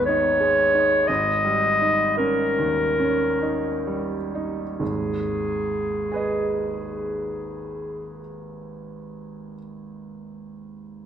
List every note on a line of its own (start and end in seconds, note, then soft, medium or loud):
0.00 1.05 G#1 soft
0.00 1.11 D#2 soft
0.00 0.40 G#3 soft
0.00 1.11 B3 soft
0.00 0.08 D#4 soft
0.06 0.60 D#4 soft
0.06 1.09 C#5 medium
0.40 0.95 G#3 soft
0.74 1.09 D#4 soft
1.07 4.77 G#1 soft
1.07 2.17 D#5 medium
1.45 2.03 G3 soft
1.82 2.42 D#4 soft
2.17 2.82 C#4 soft
2.17 4.06 A#4 medium
2.59 3.24 D#2 soft
2.99 3.68 C#4 soft
3.42 4.16 D#4 soft
3.87 4.62 G3 soft
4.35 4.80 D#4 soft
4.78 8.21 G#1 soft
4.78 8.20 D#2 soft
4.78 8.18 G#4 soft
6.12 9.52 G#4 soft
6.12 9.54 B4 soft
6.16 9.57 D#5 soft